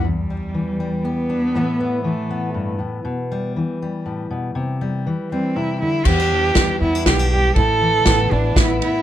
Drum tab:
CC |------|------|------|------|
RD |------|------|------|------|
SD |------|------|------|------|
BD |------|------|------|------|

CC |x-----|------|
RD |--x-x-|x-x-xx|
SD |--o-o-|--o-o-|
BD |o-o-o-|o-o-o-|